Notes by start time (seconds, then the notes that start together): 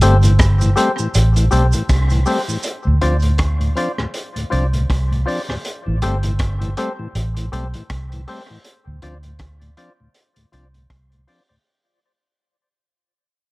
0.01 G1 G3 A3 C4 G4 A4 C5, closed hi-hat, cabasa
0.23 A2 E3, closed hi-hat, cabasa
0.39 kick, cross-stick, closed hi-hat, cabasa
0.61 A2 E3, closed hi-hat, cabasa
0.76 G3 A3 C4 G4 A4 C5, closed hi-hat, cabasa
0.98 A2 E3, cabasa
1.14 A1, closed hi-hat, cabasa
1.36 A2 E3, closed hi-hat, cabasa
1.51 B1 G3 A3 C4 G4 A4 C5, closed hi-hat, cabasa
1.73 A2 E3, closed hi-hat, cabasa
1.89 C2, kick, cross-stick, closed hi-hat, cabasa
2.10 A2 E3, closed hi-hat, cabasa
2.26 G3 A3 C4 G4 A4 C5, open hi-hat, cabasa
2.48 A2 E3, cabasa
2.63 closed hi-hat, cabasa
2.85 D2 A2
3.01 D2 F3 C4 D4 F4 C5 D5, closed hi-hat
3.22 D2 A2, closed hi-hat
3.38 kick, cross-stick, closed hi-hat
3.60 D2 A2, closed hi-hat
3.75 F3 C4 D4 F4 C5 D5, closed hi-hat
3.98 D2 A2, cross-stick
4.14 closed hi-hat
4.35 D2 A2, closed hi-hat
4.50 C2 F3 C4 D4 F4 C5 D5, closed hi-hat
4.73 D2 A2, closed hi-hat
4.90 C2, kick, cross-stick, closed hi-hat
5.12 D2 A2, closed hi-hat
5.26 F3 C4 D4 F4 C5 D5, open hi-hat
5.48 D2 A2 C5 D5, cross-stick
5.65 closed hi-hat
5.86 A1 A2 E3
6.02 G1 G3 A3 C4 G4 A4 C5, closed hi-hat
6.23 A2 E3, closed hi-hat
6.39 kick, cross-stick, closed hi-hat
6.61 A2 E3, closed hi-hat
6.77 G3 A3 C4 G4 A4 C5, closed hi-hat
6.99 A2 E3
7.15 A1, closed hi-hat
7.37 A2 E3, closed hi-hat
7.52 B1 G3 A3 C4 G4 A4 C5, closed hi-hat
7.74 A2 E3, closed hi-hat
7.90 C2, kick, cross-stick, closed hi-hat
8.12 A2 E3, closed hi-hat
8.28 G3 A3 C4 G4 A4 C5, open hi-hat
8.50 A2 E3
8.64 closed hi-hat
8.87 D2 A2
9.02 F3 C4 D4 F4 C5 D5, closed hi-hat
9.23 D2 A2, closed hi-hat
9.39 kick, cross-stick, closed hi-hat
9.61 D2 A2, closed hi-hat
9.77 F3 C4 D4 F4 C5 D5, closed hi-hat
10.00 D2 A2
10.14 closed hi-hat
10.36 D2 A2, closed hi-hat
10.52 C2 F3 C4 D4 F4 C5 D5, closed hi-hat
10.74 D2 A2, closed hi-hat
10.90 C2, kick, cross-stick, closed hi-hat
11.12 D2 A2, closed hi-hat
11.27 F3 C4 D4 F4 C5 D5, open hi-hat
11.49 D2 A2 C5 D5